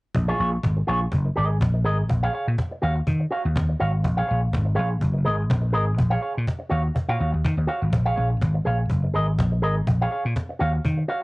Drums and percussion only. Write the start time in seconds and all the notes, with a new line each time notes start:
0.15 cajon bass
0.29 cajon slap
0.53 cajon slap
0.63 cajon bass, cajon slap
0.77 cajon slap
1.01 cajon slap
1.12 cajon bass
1.25 cajon slap
1.50 cajon slap
1.61 cajon bass, cajon slap
1.74 cajon slap
2.00 cajon slap
2.09 cajon bass
2.47 cajon slap
2.58 cajon bass, cajon slap
2.72 cajon slap
2.97 cajon slap
3.07 cajon bass
3.20 cajon slap
3.45 cajon slap
3.56 cajon bass, cajon slap
3.69 cajon slap
3.95 cajon slap
4.04 cajon bass
4.19 cajon slap
4.43 cajon slap
4.53 cajon bass, cajon slap
4.67 cajon slap
4.91 cajon slap
5.01 cajon bass
5.39 cajon slap
5.50 cajon bass, cajon slap
5.63 cajon slap
5.89 cajon slap
5.98 cajon bass
6.37 cajon slap
6.47 cajon bass, cajon slap
6.62 cajon slap
6.86 cajon slap
6.96 cajon bass
7.09 cajon slap
7.34 cajon slap
7.45 cajon bass, cajon slap
7.83 cajon slap
7.93 cajon bass
8.31 cajon slap
8.41 cajon bass, cajon slap
8.55 cajon slap
8.80 cajon slap
8.90 cajon bass
9.03 cajon slap
9.27 cajon slap
9.39 cajon bass, cajon slap
9.52 cajon slap
9.77 cajon slap
9.87 cajon bass
10.02 cajon slap
10.25 cajon slap
10.36 cajon bass, cajon slap
10.50 cajon slap
10.75 cajon slap
10.85 cajon bass